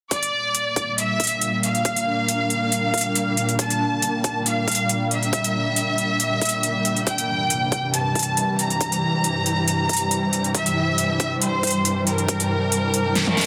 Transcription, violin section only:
0.11 D5
0.98 E5
1.63 F5
3.59 A5
4.46 F5
5.11 E5
7.07 G5
7.94 A5
8.59 A#5
10.55 E5
11.42 C5
12.07 A#4

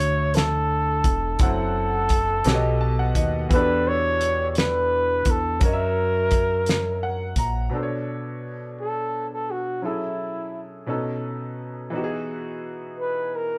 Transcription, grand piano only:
Already playing: D3 A3 E4 F#4 C#5
1.39 F#3 C4 E4 A4 F#5
2.45 B2 B3 G4 A4 C#5
2.54 D#5
2.81 A5
2.99 F#5
3.16 D#5
3.49 E3 B3 F#4
3.53 D4 G4 A4
5.60 F#3 F#4 A#4
5.65 C#5 D#5
5.73 E5
7.03 F#5
7.38 A#5
7.70 B2 B3 D4
7.75 A4 C5
7.83 C#5
9.82 F#3 C#4 E4 G#4 A4
10.86 B2 B3 C#4 D#4 A4
11.90 E3 B3 D#4
11.95 F#4 G4
12.04 G#4

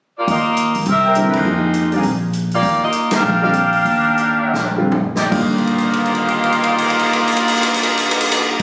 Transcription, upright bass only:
0.28 D#2
0.76 C#2
0.86 C2
1.33 muted upright bass stroke
1.45 F2
2.04 A#1
2.63 D#2
3.23 A#1
3.85 D#2
4.54 A#1
5.32 D#2

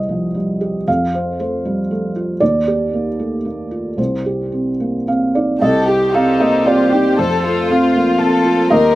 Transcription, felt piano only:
Already playing: C2 G3 C5 D#5
0.09 F3
0.34 G3
0.61 G4
0.88 F2 F5
1.14 C5
1.39 A3 C5
1.65 G3
1.91 A3
2.16 F4
2.40 D#2 D5
2.67 G4
2.93 A#3
3.19 A3
3.45 A#3
3.71 F4
3.97 C2 C5
4.26 G4
4.52 C4
4.80 A#3
5.07 C4 F5
5.35 D#4 D5
5.62 C2 D#5
5.88 G4
6.15 C4 F5
6.40 A#3 D#5
6.66 C4 D5
6.92 D#4
7.19 F2 C5
7.44 A4
7.70 C4
7.96 A#3
8.19 C4
8.45 F4
8.70 D#2 D#5

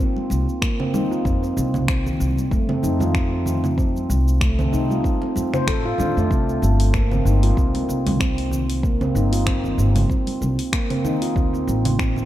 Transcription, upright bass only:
0.31 C2
1.25 F2
1.57 C2
2.20 C2
2.51 F2
2.83 F2
4.10 C2
4.73 C2
5.36 F2
5.67 A2
5.99 A2
6.16 F2
6.31 C2
6.62 G1
7.25 G1
7.57 C2
7.89 C2
9.15 G1
9.78 G1
10.41 C2
11.36 D2
11.67 A1

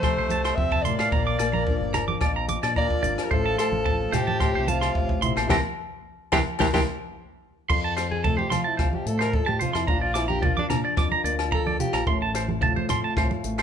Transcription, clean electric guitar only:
0.04 C6
0.18 C5
0.31 A5
0.45 C6
0.72 A5
0.85 C6
1.00 F5
1.12 A#5
1.27 D6
1.39 D5
1.53 A#5
1.94 A#5
2.08 D6
2.22 D5
2.36 A#5
2.49 D6
2.63 D5
2.76 A#5
3.03 D5
3.31 C5
3.46 A5
3.58 C6
3.86 A5
4.12 C5
4.27 A5
4.40 C6
4.55 C5
4.68 A5
4.81 C6
5.22 C6
5.37 C5
5.51 G5 A#5 C6
6.33 G5 A#5 C6
6.60 G5 A#5 C6
6.74 G5 A#5 C6
7.70 C6
7.84 A5
7.97 C5
8.24 A5
8.37 C5
8.50 C6
8.64 A5
8.77 C5
9.19 C5
9.46 A5
9.60 C5
9.73 C6
9.87 A#5
10.01 D5
10.14 D6
10.28 A#5
10.42 D5
10.57 D6
10.70 A#5
10.85 D5
10.98 D6
11.12 A#5
11.25 D5
11.52 A#5
11.67 D5
11.94 A#5
12.07 C6
12.22 A5
12.35 C5
12.63 A5
12.76 C5
12.90 C6
13.04 A5
13.18 C5
13.59 C5

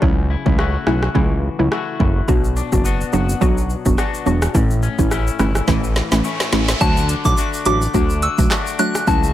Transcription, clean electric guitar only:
Already playing: A3 F#4
0.02 C#3
0.30 E4
0.59 A3 E4 F#4
0.87 F#4
1.15 E3
1.72 A3 E4 F#4
2.28 B2
2.57 D4
2.85 B3 D4 F#4
3.13 F#4
3.41 F#3
3.98 B3 D4 F#4
4.54 A2
4.83 C#4
5.11 A3 C#4 E4
5.39 E4
5.68 E3
6.24 A3 C#4 E4
6.81 D3 F#4
7.09 D4
7.38 A3 D4 F#4
7.66 A3
7.94 D4
8.22 F#4
8.51 A3 D4 F#4
9.07 C#3 F#4

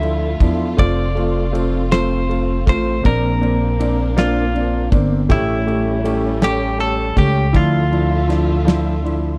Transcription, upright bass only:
Already playing: D2
0.40 E2
0.79 F1
2.68 A1
3.05 A#1
4.92 G1
5.30 A1
7.17 C#2
7.55 D2

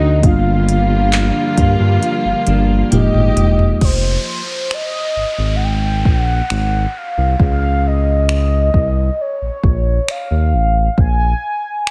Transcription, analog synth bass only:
Already playing: D2
0.23 G1
1.58 G2
1.80 G2
2.25 G1
2.47 G1
2.92 F1
3.14 G1
3.37 E1
3.82 F1
5.16 G#1
5.38 G#1
6.06 A#1
6.50 G#1
7.17 C2
7.40 C#2
8.74 C2
9.42 A#1
9.64 A#1
10.31 D#2
10.53 A1
10.98 A#1

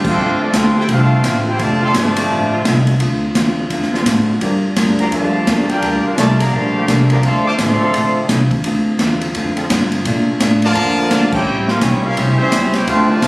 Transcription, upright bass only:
Already playing: G2
0.18 F2
0.53 D2
0.88 C2
1.59 F1
1.94 G1
2.30 A1
2.65 C2
3.00 D2
3.35 E2
3.70 F2
4.06 A2
4.41 G2
4.76 D2
5.12 F2
5.47 E2
5.70 muted upright bass stroke
5.82 D2
6.05 muted upright bass stroke
6.17 C2
6.53 A#1
6.88 C2
7.23 D2
7.58 A1
7.80 muted upright bass stroke
7.94 A#1
8.29 C2
8.64 D2
8.99 E2
9.35 F2
9.70 G2
10.05 A#2
10.27 muted upright bass stroke
10.40 A2
10.75 F2
11.11 D2
11.46 A1
11.81 B1
12.04 muted upright bass stroke
12.17 C2
12.51 C#2
12.87 D2
13.22 A#1

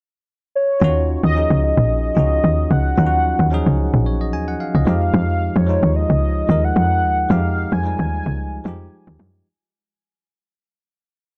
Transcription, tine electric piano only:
0.80 C#4 D#4 F4 F#4
1.34 F3 C#4 D#4 G#4
2.15 C#4 D#4 F4 F#4
2.96 F#3 C#4 D#4
3.00 F4
3.06 F#4
3.50 F3 C#4 D#4 G#4
4.06 C#5
4.21 D#5
4.33 G#5
4.48 F#5
4.60 F5
4.75 D#5
4.85 F3 G#3 D#4 G4
5.67 F3 G#3 D#4 F4
6.48 F3 G#3 D#4 A#4
7.29 F3 G#3 D#4 G4
7.83 F3 G3 G#3 D#4
8.64 F3 G#3 D#4 G4

